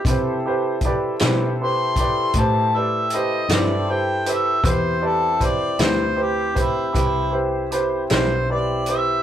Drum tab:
HH |x-xx-xx-xx-x|x-xx-xx-xx-x|
SD |---o-----o--|---o-----o--|
BD |o-o--oo-----|o-o--oo-----|